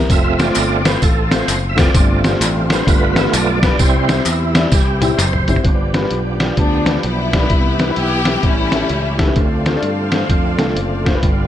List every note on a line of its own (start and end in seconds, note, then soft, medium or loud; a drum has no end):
0.00 2.83 C4 medium
0.10 0.49 F1 loud
0.10 3.76 F3 medium
0.10 1.93 A3 medium
0.10 0.82 A3 medium
0.10 0.83 C4 medium
0.10 1.93 F4 medium
0.10 0.83 F4 medium
0.10 0.41 E5 loud
0.10 kick loud
0.10 closed hi-hat medium
0.10 tambourine medium
0.39 0.51 A3 medium
0.39 0.51 C4 medium
0.39 0.51 F4 medium
0.39 0.51 C5 medium
0.39 0.87 D5 loud
0.39 snare loud
0.39 closed hi-hat medium
0.39 tambourine medium
0.55 0.96 G1 medium
0.55 clap loud
0.55 closed hi-hat medium
0.55 tambourine loud
0.84 0.96 A3 medium
0.84 0.97 C4 medium
0.84 0.97 F4 medium
0.84 0.97 B4 medium
0.84 1.03 C5 medium
0.84 snare loud
0.84 closed hi-hat medium
0.84 tambourine medium
1.02 1.42 A1 medium
1.02 1.33 A4 medium
1.02 kick loud
1.02 closed hi-hat medium
1.02 tambourine medium
1.30 1.43 A3 medium
1.30 1.43 C4 medium
1.30 1.43 F4 medium
1.30 1.43 C5 medium
1.30 1.49 C5 medium
1.30 snare loud
1.30 closed hi-hat medium
1.30 tambourine soft
1.48 1.88 F#1 medium
1.48 1.59 C5 medium
1.48 clap medium
1.48 closed hi-hat loud
1.48 tambourine loud
1.69 1.78 E5 medium
1.76 1.88 A3 medium
1.76 1.89 C4 medium
1.76 1.89 F4 medium
1.76 1.89 C5 medium
1.76 2.22 D5 loud
1.76 kick loud
1.76 snare loud
1.76 closed hi-hat medium
1.76 tambourine medium
1.94 2.34 G1 loud
1.94 2.67 G2 medium
1.94 5.61 G3 medium
1.94 2.83 A3 medium
1.94 2.83 C4 soft
1.94 3.78 D4 medium
1.94 2.83 F4 medium
1.94 kick loud
1.94 closed hi-hat medium
1.94 tambourine medium
2.24 2.36 G3 medium
2.24 2.36 D4 medium
2.24 2.36 F4 medium
2.24 2.36 C5 medium
2.24 snare loud
2.24 closed hi-hat medium
2.24 tambourine medium
2.41 2.80 A1 loud
2.41 clap loud
2.41 closed hi-hat loud
2.41 tambourine loud
2.70 2.82 G3 medium
2.70 2.83 D4 medium
2.70 2.83 F4 medium
2.70 2.83 B4 medium
2.70 2.88 C5 medium
2.70 snare loud
2.70 closed hi-hat medium
2.70 tambourine medium
2.86 3.26 G1 medium
2.86 3.59 G2 medium
2.86 3.59 A3 medium
2.86 3.78 B3 medium
2.86 3.59 B3 medium
2.86 3.60 F4 medium
2.86 3.18 B4 loud
2.86 kick loud
2.86 closed hi-hat medium
2.86 tambourine medium
3.16 3.28 G3 medium
3.16 3.28 D4 medium
3.16 3.29 F4 medium
3.16 3.29 B4 medium
3.16 3.25 E5 loud
3.16 snare loud
3.16 closed hi-hat medium
3.16 tambourine soft
3.33 3.73 B1 medium
3.33 3.81 D5 loud
3.33 clap medium
3.33 closed hi-hat medium
3.33 tambourine loud
3.63 3.74 G3 medium
3.63 3.74 D4 medium
3.63 3.75 F4 medium
3.63 3.75 B4 medium
3.63 kick medium
3.63 snare loud
3.63 closed hi-hat medium
3.63 tambourine medium
3.79 4.19 C2 loud
3.79 4.51 C3 medium
3.79 5.63 E3 medium
3.79 4.14 G3 medium
3.79 4.14 C4 soft
3.79 5.63 C4 medium
3.79 5.63 E4 medium
3.79 4.14 E4 medium
3.79 4.23 C5 medium
3.79 kick loud
3.79 closed hi-hat medium
3.79 tambourine medium
4.08 4.20 G3 medium
4.08 4.20 C4 medium
4.08 4.21 E4 medium
4.08 4.21 C5 medium
4.08 snare loud
4.08 closed hi-hat medium
4.08 tambourine medium
4.26 4.65 E2 medium
4.26 4.69 E4 medium
4.26 clap loud
4.26 closed hi-hat medium
4.26 tambourine loud
4.55 4.67 G3 medium
4.55 4.67 C4 medium
4.55 4.67 E4 medium
4.55 4.67 D5 medium
4.55 snare loud
4.55 closed hi-hat medium
4.55 tambourine medium
4.72 5.11 C2 loud
4.72 5.02 G4 medium
4.72 kick loud
4.72 snare medium
4.72 closed hi-hat medium
4.72 tambourine medium
5.01 5.16 G3 medium
5.01 5.13 G3 medium
5.01 5.16 C4 soft
5.01 5.13 C4 medium
5.01 5.19 E4 medium
5.01 5.13 E4 medium
5.01 5.14 G4 medium
5.01 closed hi-hat medium
5.01 high tom medium
5.01 tambourine medium
5.17 5.58 F#1 loud
5.17 5.61 C5 medium
5.17 clap loud
5.17 closed hi-hat loud
5.17 mid tom medium
5.17 tambourine loud
5.33 mid tom medium
5.47 5.59 G3 medium
5.47 5.60 C4 medium
5.47 5.60 E4 medium
5.47 5.60 C5 medium
5.47 closed hi-hat medium
5.47 floor tom loud
5.47 tambourine medium
5.56 floor tom loud
5.63 6.04 G1 loud
5.63 6.36 G2 medium
5.63 7.46 F3 medium
5.63 7.49 F3 medium
5.63 7.46 B3 soft
5.63 7.46 D4 medium
5.63 5.71 F#4 medium
5.63 9.33 G4 medium
5.63 8.41 B4 medium
5.63 7.50 D5 medium
5.63 kick loud
5.63 closed hi-hat medium
5.70 7.49 G4 medium
5.93 5.99 G3 medium
5.93 6.00 D4 medium
5.93 6.00 F4 medium
5.93 6.00 B4 medium
5.93 snare medium
5.93 closed hi-hat medium
6.01 6.16 G3 medium
6.01 6.16 D4 medium
6.01 6.16 F4 medium
6.01 6.16 B4 medium
6.11 6.51 B1 medium
6.11 closed hi-hat medium
6.40 6.52 G3 medium
6.40 6.53 D4 medium
6.40 6.53 F4 medium
6.40 6.53 G4 medium
6.40 snare medium
6.40 closed hi-hat medium
6.57 6.97 D2 medium
6.57 7.47 F3 medium
6.57 7.03 B3 medium
6.57 7.01 D4 medium
6.57 kick medium
6.57 closed hi-hat medium
6.86 6.98 G3 medium
6.86 6.99 D4 soft
6.86 6.99 F4 medium
6.86 6.99 B4 medium
6.86 snare loud
6.86 closed hi-hat medium
7.03 7.44 B1 medium
7.03 7.93 B3 medium
7.03 7.95 E4 medium
7.03 closed hi-hat medium
7.32 7.39 G3 medium
7.32 7.39 D4 medium
7.32 7.39 F4 medium
7.32 7.39 D5 medium
7.32 kick medium
7.32 snare loud
7.32 closed hi-hat medium
7.41 7.50 G3 medium
7.41 7.50 D4 medium
7.41 7.50 F4 soft
7.41 7.51 B4 medium
7.50 7.90 C2 medium
7.50 8.23 C3 medium
7.50 8.42 E3 medium
7.50 8.42 B3 soft
7.50 8.41 E4 medium
7.50 8.42 G4 medium
7.50 8.43 E5 medium
7.50 kick loud
7.50 closed hi-hat medium
7.79 7.86 G3 medium
7.79 7.86 C4 medium
7.79 7.86 E4 medium
7.79 7.86 B4 medium
7.79 snare medium
7.79 closed hi-hat medium
7.88 8.02 G3 medium
7.88 8.03 C4 medium
7.88 8.03 E4 medium
7.88 8.03 B4 medium
7.96 8.36 B1 medium
7.96 8.40 B3 medium
7.96 8.40 E4 medium
7.96 8.44 G4 medium
7.96 closed hi-hat medium
8.25 8.38 G3 medium
8.25 8.38 C4 medium
8.25 8.38 E4 medium
8.25 8.39 B4 medium
8.25 snare loud
8.25 closed hi-hat medium
8.43 8.83 A1 medium
8.43 9.16 A2 medium
8.43 9.35 E3 medium
8.43 9.33 G3 medium
8.43 9.35 A3 medium
8.43 8.51 C4 soft
8.43 9.33 C#4 medium
8.43 9.20 E4 medium
8.43 9.35 G4 medium
8.43 11.20 A4 medium
8.43 9.36 C#5 medium
8.43 9.36 E5 medium
8.43 kick medium
8.43 closed hi-hat medium
8.50 9.38 C#4 medium
8.72 8.84 G3 medium
8.72 8.85 C#4 medium
8.72 8.85 E4 soft
8.72 8.85 A4 medium
8.72 snare medium
8.72 closed hi-hat medium
8.89 9.29 C#2 medium
8.89 closed hi-hat medium
9.18 9.24 G3 medium
9.18 9.25 C#4 medium
9.18 9.25 E4 medium
9.18 9.25 A4 medium
9.18 kick medium
9.18 snare medium
9.18 closed hi-hat medium
9.26 9.35 G3 medium
9.26 9.35 C#4 medium
9.26 9.36 E4 medium
9.26 9.36 B4 medium
9.36 9.76 D2 loud
9.36 10.08 D3 medium
9.36 11.18 D3 medium
9.36 11.19 A3 medium
9.36 11.18 C4 medium
9.36 11.18 F4 medium
9.36 11.21 C5 medium
9.36 11.47 D5 medium
9.36 11.21 F5 medium
9.36 kick medium
9.36 closed hi-hat medium
9.65 9.72 A3 medium
9.65 9.72 D4 medium
9.65 9.72 F4 medium
9.65 9.72 C5 medium
9.65 snare medium
9.65 closed hi-hat medium
9.74 9.89 A3 medium
9.74 9.89 D4 medium
9.74 9.89 F4 medium
9.74 9.89 D5 medium
9.82 10.22 G2 medium
9.82 closed hi-hat medium
10.12 10.24 A3 medium
10.12 10.24 D4 medium
10.12 10.24 F4 medium
10.12 10.25 C5 medium
10.12 snare medium
10.12 closed hi-hat medium
10.30 10.55 F2 medium
10.30 kick medium
10.30 closed hi-hat medium
10.58 10.73 C2 medium
10.58 10.70 A3 medium
10.58 10.71 D4 medium
10.58 10.71 F4 medium
10.58 10.71 A4 medium
10.58 snare medium
10.58 closed hi-hat medium
10.76 11.15 F#1 medium
10.76 closed hi-hat medium
11.05 11.11 A3 medium
11.05 11.11 D4 medium
11.05 11.11 F4 medium
11.05 11.12 C5 medium
11.05 kick medium
11.05 snare medium
11.05 closed hi-hat medium
11.13 11.22 A3 medium
11.13 11.22 D4 medium
11.13 11.22 F4 medium
11.13 11.23 B4 medium
11.22 11.47 G1 medium
11.22 11.47 G2 medium
11.22 11.47 D3 medium
11.22 11.47 G3 medium
11.22 11.47 B3 medium
11.22 11.47 F4 medium
11.22 11.47 G4 medium
11.22 11.47 B4 soft
11.22 11.47 F5 medium
11.22 kick loud
11.22 closed hi-hat medium